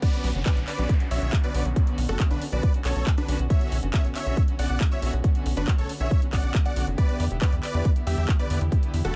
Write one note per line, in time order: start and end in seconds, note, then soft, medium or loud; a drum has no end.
0.02 0.10 D3 medium
0.02 0.10 B3 medium
0.02 0.10 C#4 medium
0.02 0.10 F#4 medium
0.02 0.29 B4 medium
0.02 0.29 D5 loud
0.02 kick loud
0.02 closed hi-hat medium
0.02 crash loud
0.02 downlifter medium
0.13 0.29 D3 medium
0.13 0.29 B3 medium
0.13 0.29 C#4 medium
0.13 0.29 F#4 medium
0.13 closed hi-hat soft
0.24 0.33 B1 loud
0.24 open hi-hat loud
0.35 0.44 F#1 medium
0.35 0.43 D3 medium
0.35 0.43 B3 medium
0.35 0.43 C#4 medium
0.35 0.43 F#4 medium
0.46 0.61 D3 medium
0.46 0.61 B3 medium
0.46 0.61 C#4 medium
0.46 0.61 F#4 medium
0.46 0.59 B4 medium
0.46 0.59 D5 loud
0.46 kick loud
0.46 clap loud
0.46 closed hi-hat medium
0.57 0.65 B1 medium
0.57 closed hi-hat soft
0.68 0.94 B4 medium
0.68 0.94 D5 loud
0.68 clap medium
0.68 open hi-hat loud
0.78 0.87 B1 medium
0.78 0.94 D3 medium
0.78 0.94 B3 medium
0.78 0.94 C#4 medium
0.78 0.94 F#4 medium
0.78 closed hi-hat soft
0.89 kick loud
0.89 closed hi-hat medium
1.00 1.08 D3 medium
1.00 1.08 B3 medium
1.00 1.08 C#4 medium
1.00 1.08 F#4 medium
1.00 closed hi-hat soft
1.11 1.20 B1 loud
1.11 1.26 D3 medium
1.11 1.26 B3 medium
1.11 1.26 C#4 medium
1.11 1.26 F#4 medium
1.11 1.31 C#5 medium
1.11 1.31 E5 medium
1.11 open hi-hat loud
1.22 1.31 B1 medium
1.22 closed hi-hat soft
1.33 kick loud
1.33 clap loud
1.33 closed hi-hat medium
1.44 1.51 D3 medium
1.44 1.51 B3 medium
1.44 1.51 C#4 medium
1.44 1.51 F#4 medium
1.44 1.64 B4 medium
1.44 1.64 D5 medium
1.44 closed hi-hat soft
1.54 1.63 B1 medium
1.54 1.70 D3 medium
1.54 1.70 B3 medium
1.54 1.70 C#4 medium
1.54 1.70 F#4 medium
1.54 open hi-hat loud
1.65 1.74 B1 medium
1.65 closed hi-hat soft
1.76 1.84 D3 medium
1.76 1.84 B3 medium
1.76 1.84 C#4 medium
1.76 1.84 F#4 medium
1.76 kick loud
1.76 closed hi-hat medium
1.87 2.02 D3 medium
1.87 2.02 B3 medium
1.87 2.02 C#4 medium
1.87 2.02 F#4 medium
1.87 closed hi-hat soft
1.98 2.07 B1 medium
1.98 open hi-hat loud
2.09 2.18 F#1 medium
2.09 2.16 D3 medium
2.09 2.16 B3 medium
2.09 2.17 C#4 medium
2.09 2.16 F#4 medium
2.09 2.22 F#4 medium
2.09 2.22 A4 medium
2.09 closed hi-hat soft
2.20 2.35 D3 medium
2.20 2.35 B3 medium
2.20 2.35 C#4 medium
2.20 2.35 F#4 medium
2.20 kick loud
2.20 clap loud
2.20 closed hi-hat medium
2.31 2.39 B1 medium
2.31 2.44 D4 medium
2.31 2.44 B4 loud
2.31 closed hi-hat soft
2.42 open hi-hat loud
2.52 2.61 B1 medium
2.52 2.67 D3 medium
2.52 2.68 B3 medium
2.52 2.68 C#4 medium
2.52 2.68 F#4 medium
2.52 2.72 B4 medium
2.52 2.72 D5 medium
2.52 closed hi-hat soft
2.63 kick loud
2.63 closed hi-hat medium
2.74 2.82 D3 medium
2.74 2.82 B3 medium
2.74 2.82 C#4 medium
2.74 2.82 F#4 medium
2.74 closed hi-hat soft
2.85 2.94 B1 loud
2.85 3.00 D3 medium
2.85 3.00 B3 medium
2.85 3.00 C#4 medium
2.85 3.00 F#4 medium
2.85 3.05 A4 medium
2.85 3.05 C#5 medium
2.85 clap medium
2.85 open hi-hat loud
2.96 3.04 B1 medium
2.96 closed hi-hat soft
3.07 kick loud
3.07 clap loud
3.07 closed hi-hat medium
3.18 3.25 D3 medium
3.18 3.25 B3 medium
3.18 3.25 C#4 medium
3.18 3.38 D4 medium
3.18 3.25 F#4 medium
3.18 3.38 B4 loud
3.18 closed hi-hat soft
3.28 3.37 B1 loud
3.28 3.44 D3 medium
3.28 3.44 B3 medium
3.28 3.44 C#4 medium
3.28 3.44 F#4 medium
3.28 open hi-hat loud
3.39 3.48 B1 medium
3.39 closed hi-hat soft
3.50 3.58 D3 medium
3.50 3.58 B3 medium
3.50 3.58 C#4 medium
3.50 3.58 F#4 medium
3.50 3.77 C#5 medium
3.50 3.77 E5 loud
3.50 kick loud
3.50 closed hi-hat medium
3.61 3.76 D3 medium
3.61 3.76 B3 medium
3.61 3.76 C#4 medium
3.61 3.76 F#4 medium
3.61 closed hi-hat soft
3.72 3.81 B1 loud
3.72 open hi-hat loud
3.83 3.91 F#1 medium
3.83 3.90 D3 medium
3.83 3.90 B3 medium
3.83 3.90 C#4 medium
3.83 3.90 F#4 medium
3.83 closed hi-hat soft
3.94 4.09 D3 medium
3.94 4.09 B3 medium
3.94 4.09 C#4 medium
3.94 4.09 F#4 medium
3.94 4.07 C#5 medium
3.94 4.07 E5 medium
3.94 kick loud
3.94 clap loud
3.94 closed hi-hat medium
4.05 4.13 B1 medium
4.05 closed hi-hat soft
4.15 4.42 C#5 medium
4.15 4.42 E5 loud
4.15 clap medium
4.15 open hi-hat loud
4.26 4.35 B1 medium
4.26 4.41 D3 medium
4.26 4.41 B3 medium
4.26 4.41 C#4 medium
4.26 4.41 F#4 medium
4.26 closed hi-hat soft
4.37 kick loud
4.37 closed hi-hat medium
4.48 4.56 D3 medium
4.48 4.56 B3 medium
4.48 4.56 C#4 medium
4.48 4.56 F#4 medium
4.48 closed hi-hat soft
4.59 4.68 B1 medium
4.59 4.74 D3 medium
4.59 4.74 B3 medium
4.59 4.74 C#4 medium
4.59 4.74 F#4 medium
4.59 4.79 D5 medium
4.59 4.79 F#5 loud
4.59 open hi-hat loud
4.70 4.78 B1 medium
4.70 closed hi-hat soft
4.81 kick loud
4.81 clap loud
4.81 closed hi-hat medium
4.91 4.99 D3 medium
4.91 4.99 B3 medium
4.91 4.99 C#4 medium
4.91 4.99 F#4 medium
4.91 5.12 C#5 medium
4.91 5.12 E5 loud
4.91 closed hi-hat soft
5.02 5.11 B1 loud
5.02 5.18 D3 medium
5.02 5.18 B3 medium
5.02 5.18 C#4 medium
5.02 5.18 F#4 medium
5.02 open hi-hat loud
5.13 5.22 B1 medium
5.13 closed hi-hat soft
5.24 5.32 D3 medium
5.24 5.32 B3 medium
5.24 5.32 C#4 medium
5.24 5.32 F#4 medium
5.24 kick loud
5.24 closed hi-hat medium
5.35 5.50 D3 medium
5.35 5.50 B3 medium
5.35 5.50 C#4 medium
5.35 5.50 F#4 medium
5.35 closed hi-hat soft
5.46 5.55 B1 medium
5.46 open hi-hat loud
5.57 5.65 F#1 medium
5.57 5.64 D3 medium
5.57 5.64 B3 medium
5.57 5.64 C#4 medium
5.57 5.70 D4 medium
5.57 5.64 F#4 medium
5.57 5.70 B4 medium
5.57 closed hi-hat soft
5.68 5.83 D3 medium
5.68 5.83 B3 medium
5.68 5.83 C#4 medium
5.68 5.83 F#4 medium
5.68 kick loud
5.68 clap loud
5.68 closed hi-hat medium
5.78 5.87 B1 medium
5.78 5.92 A4 medium
5.78 5.92 C#5 medium
5.78 closed hi-hat soft
5.89 open hi-hat loud
6.00 6.09 B1 medium
6.00 6.15 D3 medium
6.00 6.15 B3 medium
6.00 6.15 C#4 medium
6.00 6.15 F#4 medium
6.00 6.20 C#5 medium
6.00 6.20 E5 medium
6.00 closed hi-hat soft
6.11 kick loud
6.11 closed hi-hat medium
6.22 6.30 D3 medium
6.22 6.30 B3 medium
6.22 6.30 C#4 medium
6.22 6.30 F#4 medium
6.22 closed hi-hat soft
6.33 6.41 B1 loud
6.33 6.48 D3 medium
6.33 6.48 B3 medium
6.33 6.48 C#4 loud
6.33 6.48 F#4 medium
6.33 6.53 D5 medium
6.33 6.53 F#5 medium
6.33 kick medium
6.33 clap medium
6.33 open hi-hat loud
6.44 6.52 B1 medium
6.44 closed hi-hat soft
6.55 kick loud
6.55 clap loud
6.55 closed hi-hat medium
6.65 6.73 D3 medium
6.65 6.73 B3 medium
6.65 6.73 C#4 medium
6.65 6.73 F#4 medium
6.65 6.85 D5 medium
6.65 6.86 F#5 loud
6.65 closed hi-hat soft
6.76 6.85 B1 medium
6.76 6.92 D3 medium
6.76 6.92 B3 medium
6.76 6.92 C#4 medium
6.76 6.92 F#4 medium
6.76 open hi-hat loud
6.87 6.96 F#1 medium
6.87 closed hi-hat soft
6.98 7.06 D3 medium
6.98 7.06 B3 medium
6.98 7.06 E4 medium
6.98 7.06 G4 medium
6.98 7.25 B4 medium
6.98 7.25 D5 loud
6.98 kick loud
6.98 closed hi-hat medium
7.09 7.24 D3 medium
7.09 7.24 B3 medium
7.09 7.24 E4 medium
7.09 7.24 G4 medium
7.09 closed hi-hat soft
7.20 7.28 E2 medium
7.20 open hi-hat loud
7.30 7.39 E1 medium
7.30 7.38 D3 medium
7.30 7.38 B3 medium
7.30 7.38 E4 medium
7.30 7.38 G4 medium
7.30 closed hi-hat soft
7.41 7.57 D3 loud
7.41 7.57 B3 medium
7.41 7.57 E4 medium
7.41 7.57 G4 medium
7.41 7.55 B4 medium
7.41 7.55 D5 medium
7.41 kick loud
7.41 clap loud
7.41 closed hi-hat medium
7.52 7.61 E2 medium
7.52 closed hi-hat soft
7.63 7.90 B4 medium
7.63 7.90 D5 loud
7.63 clap medium
7.63 open hi-hat loud
7.74 7.83 E2 medium
7.74 7.89 D3 medium
7.74 7.89 B3 medium
7.74 7.89 E4 medium
7.74 7.89 G4 medium
7.74 closed hi-hat soft
7.85 kick loud
7.85 closed hi-hat medium
7.96 8.03 D3 medium
7.96 8.03 B3 medium
7.96 8.03 E4 medium
7.96 8.03 G4 medium
7.96 closed hi-hat soft
8.06 8.15 E2 loud
8.06 8.22 D3 medium
8.06 8.22 B3 medium
8.06 8.22 E4 medium
8.06 8.22 G4 medium
8.06 8.27 G4 medium
8.06 8.27 E5 medium
8.06 open hi-hat loud
8.18 8.26 E2 medium
8.29 kick loud
8.29 clap loud
8.29 closed hi-hat medium
8.39 8.47 D3 medium
8.39 8.47 B3 medium
8.39 8.47 E4 medium
8.39 8.47 G4 medium
8.39 8.59 B4 medium
8.39 8.59 D5 loud
8.39 closed hi-hat soft
8.50 8.59 E2 loud
8.50 8.65 D3 medium
8.50 8.65 B3 medium
8.50 8.65 E4 medium
8.50 8.65 G4 medium
8.50 open hi-hat loud
8.61 8.70 E2 medium
8.61 closed hi-hat soft
8.72 8.79 D3 medium
8.72 8.79 B3 medium
8.72 8.79 E4 medium
8.72 8.79 G4 medium
8.72 kick loud
8.72 closed hi-hat medium
8.83 8.98 D3 medium
8.83 8.98 B3 medium
8.83 8.98 E4 medium
8.83 8.98 G4 medium
8.83 closed hi-hat soft
8.94 9.02 E2 medium
8.94 open hi-hat loud
9.04 9.13 E1 medium
9.04 9.12 D3 medium
9.04 9.12 B3 medium
9.04 9.12 E4 medium
9.04 9.16 F#4 medium
9.04 9.12 G4 medium
9.04 9.16 A4 medium
9.04 closed hi-hat soft